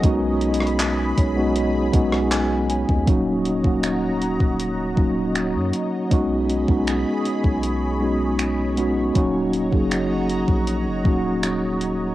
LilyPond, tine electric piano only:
\new Staff \with { instrumentName = "Tine electric piano" } { \time 4/4 \key dis \phrygian \tempo 4 = 79 << { <ais' dis''>16 r4 r16 cis''8 dis''8 fis''8 gis''8 gis''8 | r1 | r1 | r1 | } \\ { <gis b cis' dis' fis'>4~ <gis b cis' dis' fis'>16 r8 <gis b cis' dis' fis'>8 r16 <gis b cis' dis' fis'>4 r8 | <fis ais cis' dis' fis'>8 r16 <fis ais cis' dis' fis'>4~ <fis ais cis' dis' fis'>16 r8 <fis ais cis' dis' fis'>4 r8 | <gis b cis' dis' fis'>8 r16 <gis b cis' dis' fis'>4~ <gis b cis' dis' fis'>16 r8 <gis b cis' dis' fis'>8. r16 <gis b cis' dis' fis'>16 r16 | <fis ais cis' dis' fis'>8 r16 <fis ais cis' dis' gis'>4~ <fis ais cis' dis' gis'>16 r8 <fis ais cis' dis' fis'>4 r8 | } >> }